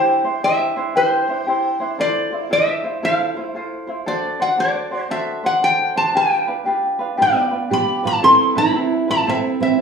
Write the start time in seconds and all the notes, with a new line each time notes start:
Already playing: D4 E4 G4 C5
0.24 D4 E4 C5
0.43 D4 E4 G4 C5 E5
0.76 D4 E4 C5
0.95 D4 E4 G4 C5
1.29 D4 E4 C5
1.47 D4 E4 G4 C5
1.80 D4 E4 C5
1.99 E4 F4 A4 C5 D5
2.31 E4 F4 C5
2.50 E4 F4 A4 C5 E5
2.84 E4 F4 C5
3.03 E4 F4 A4 C5 F5
3.37 E4 F4 C5
3.55 E4 F4 A4 C5
3.87 E4 F4 C5
4.06 D4 F#4 A4 C5 D5
4.40 D4 F#4 C5 F#5
4.58 D4 F#4 A4 C5 D5
4.91 D4 F#4 C5
5.02 C5
5.10 D4 F#4 A4 C5 E5
5.44 D4 F#4 C5 F#5
5.63 D4 F#4 A4 C5 G5
5.96 D4 F#4 C5 A5
6.15 D4 F4 G4 B4 G5
6.47 D4 F4 B4
6.65 D4 F4 G4 B4
6.99 D4 F4 B4
7.17 B3 D4 F4 G4 B4
7.22 D5
7.51 D4 F4 B4
7.70 D4 F4 G4 B4 B5
8.04 D4 F4 B4 A5
8.22 C4 E4 A4 B4 C6
8.55 C4 E4 B4 B5
8.74 C4 E4 A4 B4
9.08 C4 E4 F4 B4 A5
9.26 C4 E4 A4 B4 E5
9.60 C4 E4 B4 E5